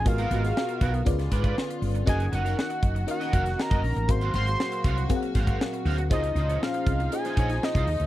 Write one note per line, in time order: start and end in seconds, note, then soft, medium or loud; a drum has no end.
0.05 0.27 G#1 medium
0.05 1.05 B2 medium
0.05 0.75 B3 medium
0.05 0.75 F#4 medium
0.05 1.05 F#4 medium
0.05 0.75 G#4 medium
0.05 1.05 A#4 medium
0.05 0.75 A#4 medium
0.05 0.75 D#5 medium
0.05 1.58 F5 loud
0.05 muted clean electric guitar stroke soft
0.05 kick loud
0.05 closed hi-hat medium
0.18 0.30 B3 medium
0.18 0.30 F#4 medium
0.18 0.31 A#4 medium
0.18 closed hi-hat medium
0.30 0.51 G#1 loud
0.30 0.44 B3 medium
0.30 0.43 F#4 medium
0.30 0.43 A#4 medium
0.30 closed hi-hat medium
0.44 muted clean electric guitar stroke medium
0.44 snare soft
0.44 closed hi-hat medium
0.56 muted clean electric guitar stroke soft
0.56 snare loud
0.69 muted clean electric guitar stroke soft
0.69 closed hi-hat soft
0.81 1.02 B1 loud
0.81 0.98 B3 medium
0.81 0.93 F#4 loud
0.81 0.92 A#4 medium
0.81 kick medium
0.81 closed hi-hat medium
0.94 muted clean electric guitar stroke soft
0.94 closed hi-hat soft
1.05 1.27 C#2 medium
1.05 2.06 D3 medium
1.05 2.07 B3 medium
1.05 1.75 C#4 medium
1.05 1.75 F4 medium
1.05 2.07 F4 medium
1.05 1.75 G#4 medium
1.05 1.76 B4 medium
1.05 1.76 D5 medium
1.05 muted clean electric guitar stroke soft
1.05 kick loud
1.05 closed hi-hat loud
1.19 muted clean electric guitar stroke medium
1.19 snare soft
1.19 closed hi-hat soft
1.31 1.52 G#2 medium
1.31 1.44 F4 medium
1.31 1.44 B4 medium
1.31 1.43 D5 medium
1.31 kick medium
1.31 closed hi-hat medium
1.44 1.55 F4 medium
1.44 1.56 B4 medium
1.44 1.56 D5 medium
1.44 kick medium
1.44 closed hi-hat soft
1.57 muted clean electric guitar stroke soft
1.57 snare loud
1.69 muted clean electric guitar stroke soft
1.69 closed hi-hat medium
1.82 2.03 G1 medium
1.82 open hi-hat medium
1.95 muted clean electric guitar stroke soft
1.95 closed hi-hat medium
2.06 2.28 F#1 loud
2.06 4.07 D#3 medium
2.06 6.06 A#3 medium
2.06 2.76 C#4 medium
2.06 2.76 D#4 medium
2.06 2.76 F#4 medium
2.06 2.24 F#4 medium
2.06 4.07 F#4 medium
2.06 2.76 A#4 medium
2.06 2.24 A#4 medium
2.06 2.76 D#5 medium
2.06 2.24 D#5 medium
2.06 2.32 G#5 medium
2.06 kick loud
2.06 closed hi-hat loud
2.20 closed hi-hat medium
2.32 2.53 F#1 loud
2.32 2.44 F#4 medium
2.32 2.44 A#4 medium
2.32 2.44 D#5 medium
2.32 3.05 F#5 medium
2.32 closed hi-hat medium
2.44 2.56 F#4 medium
2.44 2.57 A#4 medium
2.44 2.58 F5 medium
2.44 snare soft
2.44 closed hi-hat medium
2.57 muted clean electric guitar stroke soft
2.57 snare loud
2.70 muted clean electric guitar stroke medium
2.70 closed hi-hat medium
2.83 3.04 F#1 medium
2.83 kick medium
2.83 closed hi-hat medium
2.95 muted clean electric guitar stroke soft
2.95 closed hi-hat soft
3.07 3.77 C#4 medium
3.07 3.77 D#4 medium
3.07 3.77 F#4 medium
3.07 3.77 A#4 medium
3.07 3.77 D#5 medium
3.07 3.63 F#5 medium
3.07 muted clean electric guitar stroke soft
3.07 closed hi-hat loud
3.20 3.31 F#4 soft
3.20 3.32 A#4 medium
3.20 3.33 D#5 medium
3.20 snare soft
3.20 closed hi-hat soft
3.32 3.54 F1 medium
3.32 3.50 F#4 medium
3.32 3.45 A#4 medium
3.32 3.45 F5 medium
3.32 kick medium
3.32 closed hi-hat medium
3.45 muted clean electric guitar stroke soft
3.45 snare soft
3.45 closed hi-hat medium
3.58 4.12 A#5 loud
3.58 muted clean electric guitar stroke soft
3.58 snare loud
3.70 3.81 F#1 loud
3.70 3.82 F#4 medium
3.70 3.82 A#4 medium
3.70 3.83 D#5 medium
3.70 kick loud
3.70 closed hi-hat soft
3.83 3.94 A#1 medium
3.83 muted clean electric guitar stroke soft
3.83 open hi-hat medium
3.96 4.07 A1 medium
3.96 muted clean electric guitar stroke soft
3.96 closed hi-hat medium
4.08 4.30 G#1 loud
4.08 8.06 A#2 medium
4.08 6.08 F#3 medium
4.08 4.78 C4 medium
4.08 4.78 F#4 medium
4.08 6.08 F#4 medium
4.08 4.78 G#4 medium
4.08 4.78 A#4 medium
4.08 4.78 F5 medium
4.08 4.35 C6 loud
4.08 muted clean electric guitar stroke soft
4.08 kick loud
4.08 closed hi-hat loud
4.21 4.33 F#4 medium
4.21 4.34 C5 medium
4.21 4.34 F5 medium
4.21 closed hi-hat medium
4.34 4.55 G#1 loud
4.34 4.47 F#4 medium
4.34 4.47 C5 medium
4.34 4.46 F5 medium
4.34 5.06 C6 loud
4.34 closed hi-hat medium
4.47 muted clean electric guitar stroke soft
4.47 closed hi-hat medium
4.60 muted clean electric guitar stroke soft
4.60 snare loud
4.72 muted clean electric guitar stroke soft
4.72 closed hi-hat medium
4.84 5.05 C2 medium
4.84 5.02 F#4 medium
4.84 4.97 C5 medium
4.84 4.96 F5 loud
4.84 kick medium
4.84 closed hi-hat medium
4.98 muted clean electric guitar stroke soft
4.98 closed hi-hat soft
5.09 5.79 C4 medium
5.09 5.79 F#4 medium
5.09 5.79 G#4 medium
5.09 5.79 A#4 medium
5.09 5.16 F5 medium
5.09 muted clean electric guitar stroke soft
5.09 kick loud
5.09 closed hi-hat loud
5.16 5.82 F#5 medium
5.23 muted clean electric guitar stroke medium
5.23 closed hi-hat soft
5.35 5.56 G#1 medium
5.35 5.47 F#4 medium
5.35 5.47 C5 medium
5.35 5.47 F5 medium
5.35 kick medium
5.35 snare soft
5.35 closed hi-hat medium
5.47 5.61 F#4 medium
5.47 5.61 C5 medium
5.47 5.61 F5 medium
5.47 kick medium
5.47 closed hi-hat medium
5.61 snare loud
5.73 muted clean electric guitar stroke medium
5.73 closed hi-hat medium
5.85 6.11 D2 loud
5.85 6.03 F#4 medium
5.85 5.98 C5 medium
5.85 5.97 F5 loud
5.85 open hi-hat medium
5.98 muted clean electric guitar stroke soft
5.98 closed hi-hat soft
6.10 6.32 C#2 loud
6.10 8.06 F3 medium
6.10 6.80 C#4 medium
6.10 6.28 D#4 medium
6.10 8.06 D#4 medium
6.10 6.80 F4 medium
6.10 6.28 F4 medium
6.10 6.80 G#4 medium
6.10 6.80 C5 medium
6.10 6.28 C5 medium
6.10 6.80 D#5 medium
6.10 6.65 D#5 loud
6.10 kick loud
6.10 closed hi-hat loud
6.24 closed hi-hat medium
6.35 6.56 C#2 loud
6.35 6.49 D#4 medium
6.35 6.48 F4 medium
6.35 6.48 C5 medium
6.35 closed hi-hat medium
6.49 6.60 D#4 medium
6.49 6.61 F4 medium
6.49 6.62 C#5 medium
6.49 closed hi-hat medium
6.62 7.15 F5 loud
6.62 muted clean electric guitar stroke soft
6.62 snare loud
6.74 muted clean electric guitar stroke medium
6.74 closed hi-hat medium
6.87 7.07 C2 medium
6.87 kick loud
6.87 closed hi-hat medium
7.00 muted clean electric guitar stroke medium
7.00 closed hi-hat soft
7.12 7.81 C#4 medium
7.12 7.81 F4 medium
7.12 7.81 G#4 medium
7.12 7.81 C5 medium
7.12 7.81 D#5 medium
7.12 7.65 G#5 loud
7.12 muted clean electric guitar stroke soft
7.12 closed hi-hat loud
7.25 7.36 D#4 soft
7.25 7.37 F4 medium
7.25 7.38 C5 medium
7.25 snare soft
7.25 closed hi-hat medium
7.37 7.58 A#1 medium
7.37 7.54 D#4 medium
7.37 7.50 F4 medium
7.37 7.50 C#5 loud
7.37 kick medium
7.37 closed hi-hat medium
7.50 muted clean electric guitar stroke soft
7.50 snare soft
7.50 closed hi-hat medium
7.63 8.06 D#5 loud
7.63 muted clean electric guitar stroke soft
7.63 snare loud
7.75 7.85 C2 loud
7.75 7.87 D#4 medium
7.75 7.87 F4 medium
7.75 7.88 C5 medium
7.75 kick medium
7.75 closed hi-hat medium
7.87 7.98 D#2 medium
7.87 muted clean electric guitar stroke soft
7.87 open hi-hat medium
8.00 8.06 D2 medium
8.00 muted clean electric guitar stroke soft
8.00 closed hi-hat soft